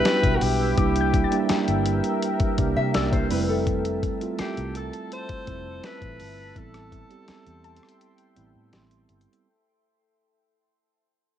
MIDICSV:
0, 0, Header, 1, 9, 480
1, 0, Start_track
1, 0, Key_signature, 0, "minor"
1, 0, Tempo, 722892
1, 515, Time_signature, 4, 2, 24, 8
1, 7562, End_track
2, 0, Start_track
2, 0, Title_t, "Synth pluck"
2, 0, Program_c, 0, 84
2, 516, Note_on_c, 0, 86, 68
2, 669, Note_on_c, 0, 91, 52
2, 825, Note_on_c, 0, 93, 51
2, 1851, Note_off_c, 0, 86, 0
2, 1956, Note_on_c, 0, 88, 61
2, 1987, Note_off_c, 0, 91, 0
2, 2125, Note_off_c, 0, 93, 0
2, 2409, Note_off_c, 0, 88, 0
2, 2915, Note_on_c, 0, 96, 69
2, 4250, Note_off_c, 0, 96, 0
2, 5076, Note_on_c, 0, 81, 79
2, 6410, Note_off_c, 0, 81, 0
2, 7562, End_track
3, 0, Start_track
3, 0, Title_t, "Ambient pad"
3, 0, Program_c, 1, 92
3, 0, Note_on_c, 1, 71, 78
3, 0, Note_on_c, 1, 76, 77
3, 0, Note_on_c, 1, 79, 73
3, 498, Note_off_c, 1, 71, 0
3, 517, Note_on_c, 1, 70, 86
3, 2169, Note_off_c, 1, 79, 0
3, 2179, Note_off_c, 1, 70, 0
3, 2197, Note_on_c, 1, 69, 85
3, 2197, Note_on_c, 1, 81, 76
3, 4328, Note_off_c, 1, 76, 0
3, 4334, Note_off_c, 1, 81, 0
3, 4355, Note_on_c, 1, 76, 75
3, 4355, Note_on_c, 1, 79, 79
3, 4355, Note_on_c, 1, 84, 94
3, 6250, Note_off_c, 1, 69, 0
3, 6256, Note_off_c, 1, 76, 0
3, 6256, Note_off_c, 1, 79, 0
3, 6256, Note_off_c, 1, 84, 0
3, 7562, End_track
4, 0, Start_track
4, 0, Title_t, "Nylon-string guitar"
4, 0, Program_c, 2, 24
4, 1836, Note_on_c, 2, 76, 80
4, 1950, Note_off_c, 2, 76, 0
4, 1956, Note_on_c, 2, 74, 85
4, 2069, Note_off_c, 2, 74, 0
4, 2077, Note_on_c, 2, 72, 90
4, 2195, Note_off_c, 2, 72, 0
4, 2195, Note_on_c, 2, 71, 81
4, 2309, Note_off_c, 2, 71, 0
4, 2316, Note_on_c, 2, 69, 79
4, 3009, Note_off_c, 2, 69, 0
4, 7562, End_track
5, 0, Start_track
5, 0, Title_t, "Alto saxophone"
5, 0, Program_c, 3, 65
5, 0, Note_on_c, 3, 71, 121
5, 238, Note_on_c, 3, 66, 67
5, 248, Note_off_c, 3, 71, 0
5, 286, Note_on_c, 3, 67, 88
5, 296, Note_off_c, 3, 66, 0
5, 1001, Note_off_c, 3, 67, 0
5, 2927, Note_on_c, 3, 67, 100
5, 3145, Note_off_c, 3, 67, 0
5, 3167, Note_on_c, 3, 69, 102
5, 3385, Note_off_c, 3, 69, 0
5, 3408, Note_on_c, 3, 72, 126
5, 3888, Note_on_c, 3, 71, 113
5, 3898, Note_off_c, 3, 72, 0
5, 4368, Note_on_c, 3, 69, 109
5, 4378, Note_off_c, 3, 71, 0
5, 5802, Note_off_c, 3, 69, 0
5, 7562, End_track
6, 0, Start_track
6, 0, Title_t, "Tine electric piano"
6, 0, Program_c, 4, 4
6, 0, Control_c, 4, 64, 127
6, 0, Note_on_c, 4, 55, 79
6, 0, Note_on_c, 4, 59, 66
6, 0, Note_on_c, 4, 62, 66
6, 0, Note_on_c, 4, 64, 84
6, 0, Note_on_c, 4, 66, 66
6, 0, Note_on_c, 4, 67, 85
6, 461, Note_off_c, 4, 55, 0
6, 463, Note_off_c, 4, 59, 0
6, 465, Note_off_c, 4, 62, 0
6, 489, Note_off_c, 4, 67, 0
6, 509, Note_on_c, 4, 55, 81
6, 513, Note_on_c, 4, 58, 72
6, 517, Note_on_c, 4, 62, 68
6, 522, Note_off_c, 4, 64, 0
6, 522, Note_on_c, 4, 64, 86
6, 524, Control_c, 4, 64, 0
6, 527, Note_off_c, 4, 66, 0
6, 642, Control_c, 4, 64, 127
6, 846, Note_off_c, 4, 55, 0
6, 848, Note_off_c, 4, 58, 0
6, 850, Note_off_c, 4, 62, 0
6, 852, Note_off_c, 4, 64, 0
6, 870, Note_on_c, 4, 55, 95
6, 875, Note_on_c, 4, 58, 82
6, 878, Note_on_c, 4, 62, 83
6, 882, Note_on_c, 4, 67, 107
6, 1652, Note_off_c, 4, 55, 0
6, 1654, Note_off_c, 4, 58, 0
6, 1656, Note_off_c, 4, 62, 0
6, 1658, Note_off_c, 4, 67, 0
6, 1709, Note_on_c, 4, 55, 88
6, 1714, Note_on_c, 4, 58, 82
6, 1718, Note_on_c, 4, 62, 77
6, 1723, Note_on_c, 4, 67, 97
6, 2180, Note_off_c, 4, 55, 0
6, 2188, Note_on_c, 4, 55, 95
6, 2193, Note_on_c, 4, 57, 97
6, 2195, Note_off_c, 4, 58, 0
6, 2197, Note_off_c, 4, 62, 0
6, 2198, Note_on_c, 4, 60, 91
6, 2199, Note_off_c, 4, 67, 0
6, 2201, Note_on_c, 4, 64, 112
6, 2204, Control_c, 4, 64, 0
6, 2313, Control_c, 4, 64, 127
6, 2748, Note_off_c, 4, 55, 0
6, 2750, Note_off_c, 4, 57, 0
6, 2753, Note_off_c, 4, 60, 0
6, 2755, Note_off_c, 4, 64, 0
6, 2791, Note_on_c, 4, 55, 78
6, 2795, Note_on_c, 4, 57, 74
6, 2800, Note_on_c, 4, 60, 75
6, 2804, Note_on_c, 4, 65, 91
6, 3572, Note_off_c, 4, 55, 0
6, 3574, Note_off_c, 4, 57, 0
6, 3577, Note_off_c, 4, 60, 0
6, 3579, Note_off_c, 4, 65, 0
6, 3629, Note_on_c, 4, 55, 71
6, 3635, Note_on_c, 4, 57, 65
6, 3639, Note_on_c, 4, 60, 67
6, 3644, Note_on_c, 4, 64, 88
6, 4300, Note_off_c, 4, 55, 0
6, 4303, Note_off_c, 4, 57, 0
6, 4305, Note_off_c, 4, 60, 0
6, 4307, Note_off_c, 4, 64, 0
6, 4350, Note_on_c, 4, 55, 75
6, 4355, Note_on_c, 4, 59, 76
6, 4359, Note_on_c, 4, 60, 68
6, 4363, Control_c, 4, 64, 0
6, 4364, Note_on_c, 4, 64, 88
6, 4475, Control_c, 4, 64, 127
6, 4687, Note_off_c, 4, 55, 0
6, 4689, Note_off_c, 4, 59, 0
6, 4691, Note_off_c, 4, 60, 0
6, 4693, Note_off_c, 4, 64, 0
6, 4709, Note_on_c, 4, 55, 81
6, 4714, Note_on_c, 4, 59, 71
6, 4717, Note_on_c, 4, 60, 75
6, 4722, Note_on_c, 4, 67, 88
6, 5491, Note_off_c, 4, 55, 0
6, 5493, Note_off_c, 4, 59, 0
6, 5495, Note_off_c, 4, 60, 0
6, 5498, Note_off_c, 4, 67, 0
6, 5548, Note_on_c, 4, 55, 88
6, 5553, Note_on_c, 4, 59, 82
6, 5558, Note_on_c, 4, 60, 79
6, 5562, Note_on_c, 4, 64, 95
6, 6220, Note_off_c, 4, 55, 0
6, 6222, Note_off_c, 4, 59, 0
6, 6224, Note_off_c, 4, 60, 0
6, 6226, Note_off_c, 4, 64, 0
6, 6285, Control_c, 4, 64, 0
6, 7562, End_track
7, 0, Start_track
7, 0, Title_t, "Fingered electric bass"
7, 0, Program_c, 5, 33
7, 158, Note_on_c, 5, 35, 92
7, 261, Note_off_c, 5, 35, 0
7, 278, Note_on_c, 5, 35, 99
7, 485, Note_off_c, 5, 35, 0
7, 517, Note_on_c, 5, 36, 100
7, 829, Note_off_c, 5, 36, 0
7, 1118, Note_on_c, 5, 31, 94
7, 1325, Note_off_c, 5, 31, 0
7, 1717, Note_on_c, 5, 36, 95
7, 1820, Note_off_c, 5, 36, 0
7, 1837, Note_on_c, 5, 48, 100
7, 1940, Note_off_c, 5, 48, 0
7, 1958, Note_on_c, 5, 36, 101
7, 2165, Note_off_c, 5, 36, 0
7, 2198, Note_on_c, 5, 29, 109
7, 2718, Note_off_c, 5, 29, 0
7, 3039, Note_on_c, 5, 36, 91
7, 3246, Note_off_c, 5, 36, 0
7, 3637, Note_on_c, 5, 29, 98
7, 3845, Note_off_c, 5, 29, 0
7, 3997, Note_on_c, 5, 33, 98
7, 4101, Note_off_c, 5, 33, 0
7, 4120, Note_on_c, 5, 31, 87
7, 4326, Note_off_c, 5, 31, 0
7, 4357, Note_on_c, 5, 33, 107
7, 4669, Note_off_c, 5, 33, 0
7, 4959, Note_on_c, 5, 40, 95
7, 5166, Note_off_c, 5, 40, 0
7, 5559, Note_on_c, 5, 33, 91
7, 5662, Note_off_c, 5, 33, 0
7, 5680, Note_on_c, 5, 45, 101
7, 5782, Note_off_c, 5, 45, 0
7, 5800, Note_on_c, 5, 33, 88
7, 6006, Note_off_c, 5, 33, 0
7, 6039, Note_on_c, 5, 31, 99
7, 6142, Note_off_c, 5, 31, 0
7, 7562, End_track
8, 0, Start_track
8, 0, Title_t, "Muted fingered electric bass strokes"
8, 999, Note_on_c, 9, 29, 52
8, 1065, Note_off_c, 9, 29, 0
8, 2919, Note_on_c, 9, 29, 54
8, 2985, Note_off_c, 9, 29, 0
8, 4839, Note_on_c, 9, 29, 54
8, 4906, Note_off_c, 9, 29, 0
8, 7562, End_track
9, 0, Start_track
9, 0, Title_t, "Drums"
9, 35, Note_on_c, 9, 42, 70
9, 37, Note_on_c, 9, 38, 106
9, 101, Note_off_c, 9, 42, 0
9, 103, Note_off_c, 9, 38, 0
9, 156, Note_on_c, 9, 36, 100
9, 157, Note_on_c, 9, 42, 56
9, 222, Note_off_c, 9, 36, 0
9, 223, Note_off_c, 9, 42, 0
9, 274, Note_on_c, 9, 46, 68
9, 341, Note_off_c, 9, 46, 0
9, 515, Note_on_c, 9, 36, 114
9, 515, Note_on_c, 9, 42, 72
9, 581, Note_off_c, 9, 42, 0
9, 582, Note_off_c, 9, 36, 0
9, 636, Note_on_c, 9, 42, 59
9, 702, Note_off_c, 9, 42, 0
9, 755, Note_on_c, 9, 36, 93
9, 756, Note_on_c, 9, 42, 72
9, 822, Note_off_c, 9, 36, 0
9, 822, Note_off_c, 9, 42, 0
9, 876, Note_on_c, 9, 42, 47
9, 943, Note_off_c, 9, 42, 0
9, 991, Note_on_c, 9, 42, 76
9, 994, Note_on_c, 9, 38, 127
9, 1057, Note_off_c, 9, 42, 0
9, 1060, Note_off_c, 9, 38, 0
9, 1115, Note_on_c, 9, 42, 51
9, 1182, Note_off_c, 9, 42, 0
9, 1233, Note_on_c, 9, 42, 67
9, 1300, Note_off_c, 9, 42, 0
9, 1354, Note_on_c, 9, 42, 47
9, 1421, Note_off_c, 9, 42, 0
9, 1478, Note_on_c, 9, 42, 69
9, 1544, Note_off_c, 9, 42, 0
9, 1592, Note_on_c, 9, 42, 53
9, 1595, Note_on_c, 9, 36, 109
9, 1658, Note_off_c, 9, 42, 0
9, 1661, Note_off_c, 9, 36, 0
9, 1713, Note_on_c, 9, 42, 76
9, 1715, Note_on_c, 9, 36, 106
9, 1779, Note_off_c, 9, 42, 0
9, 1781, Note_off_c, 9, 36, 0
9, 1954, Note_on_c, 9, 42, 67
9, 1956, Note_on_c, 9, 38, 114
9, 2020, Note_off_c, 9, 42, 0
9, 2023, Note_off_c, 9, 38, 0
9, 2075, Note_on_c, 9, 36, 95
9, 2076, Note_on_c, 9, 42, 54
9, 2142, Note_off_c, 9, 36, 0
9, 2142, Note_off_c, 9, 42, 0
9, 2195, Note_on_c, 9, 46, 69
9, 2261, Note_off_c, 9, 46, 0
9, 2435, Note_on_c, 9, 36, 119
9, 2435, Note_on_c, 9, 42, 73
9, 2502, Note_off_c, 9, 36, 0
9, 2502, Note_off_c, 9, 42, 0
9, 2556, Note_on_c, 9, 42, 56
9, 2623, Note_off_c, 9, 42, 0
9, 2675, Note_on_c, 9, 36, 101
9, 2676, Note_on_c, 9, 42, 69
9, 2742, Note_off_c, 9, 36, 0
9, 2743, Note_off_c, 9, 42, 0
9, 2797, Note_on_c, 9, 42, 49
9, 2864, Note_off_c, 9, 42, 0
9, 2912, Note_on_c, 9, 42, 77
9, 2915, Note_on_c, 9, 38, 126
9, 2978, Note_off_c, 9, 42, 0
9, 2981, Note_off_c, 9, 38, 0
9, 3036, Note_on_c, 9, 42, 51
9, 3103, Note_off_c, 9, 42, 0
9, 3154, Note_on_c, 9, 42, 70
9, 3220, Note_off_c, 9, 42, 0
9, 3276, Note_on_c, 9, 42, 48
9, 3342, Note_off_c, 9, 42, 0
9, 3399, Note_on_c, 9, 42, 69
9, 3465, Note_off_c, 9, 42, 0
9, 3513, Note_on_c, 9, 42, 55
9, 3516, Note_on_c, 9, 36, 105
9, 3579, Note_off_c, 9, 42, 0
9, 3582, Note_off_c, 9, 36, 0
9, 3634, Note_on_c, 9, 42, 76
9, 3636, Note_on_c, 9, 36, 102
9, 3701, Note_off_c, 9, 42, 0
9, 3702, Note_off_c, 9, 36, 0
9, 3875, Note_on_c, 9, 42, 66
9, 3877, Note_on_c, 9, 38, 113
9, 3941, Note_off_c, 9, 42, 0
9, 3944, Note_off_c, 9, 38, 0
9, 3995, Note_on_c, 9, 36, 100
9, 3997, Note_on_c, 9, 42, 58
9, 4062, Note_off_c, 9, 36, 0
9, 4063, Note_off_c, 9, 42, 0
9, 4115, Note_on_c, 9, 46, 73
9, 4181, Note_off_c, 9, 46, 0
9, 4355, Note_on_c, 9, 36, 107
9, 4356, Note_on_c, 9, 42, 72
9, 4422, Note_off_c, 9, 36, 0
9, 4422, Note_off_c, 9, 42, 0
9, 4476, Note_on_c, 9, 42, 57
9, 4477, Note_on_c, 9, 37, 98
9, 4543, Note_off_c, 9, 37, 0
9, 4543, Note_off_c, 9, 42, 0
9, 4596, Note_on_c, 9, 36, 98
9, 4597, Note_on_c, 9, 42, 67
9, 4662, Note_off_c, 9, 36, 0
9, 4664, Note_off_c, 9, 42, 0
9, 4718, Note_on_c, 9, 42, 48
9, 4784, Note_off_c, 9, 42, 0
9, 4833, Note_on_c, 9, 42, 77
9, 4836, Note_on_c, 9, 38, 116
9, 4899, Note_off_c, 9, 42, 0
9, 4902, Note_off_c, 9, 38, 0
9, 4957, Note_on_c, 9, 42, 51
9, 5023, Note_off_c, 9, 42, 0
9, 5074, Note_on_c, 9, 46, 53
9, 5076, Note_on_c, 9, 42, 41
9, 5141, Note_off_c, 9, 46, 0
9, 5142, Note_off_c, 9, 42, 0
9, 5156, Note_on_c, 9, 42, 56
9, 5200, Note_on_c, 9, 37, 63
9, 5222, Note_off_c, 9, 42, 0
9, 5237, Note_on_c, 9, 42, 70
9, 5267, Note_off_c, 9, 37, 0
9, 5303, Note_off_c, 9, 42, 0
9, 5320, Note_on_c, 9, 42, 72
9, 5386, Note_off_c, 9, 42, 0
9, 5433, Note_on_c, 9, 42, 56
9, 5500, Note_off_c, 9, 42, 0
9, 5554, Note_on_c, 9, 42, 75
9, 5621, Note_off_c, 9, 42, 0
9, 5795, Note_on_c, 9, 42, 65
9, 5798, Note_on_c, 9, 38, 105
9, 5862, Note_off_c, 9, 42, 0
9, 5864, Note_off_c, 9, 38, 0
9, 5917, Note_on_c, 9, 42, 56
9, 5983, Note_off_c, 9, 42, 0
9, 6035, Note_on_c, 9, 46, 67
9, 6036, Note_on_c, 9, 42, 57
9, 6101, Note_off_c, 9, 46, 0
9, 6102, Note_off_c, 9, 42, 0
9, 6115, Note_on_c, 9, 42, 53
9, 6182, Note_off_c, 9, 42, 0
9, 6195, Note_on_c, 9, 42, 57
9, 6262, Note_off_c, 9, 42, 0
9, 7562, End_track
0, 0, End_of_file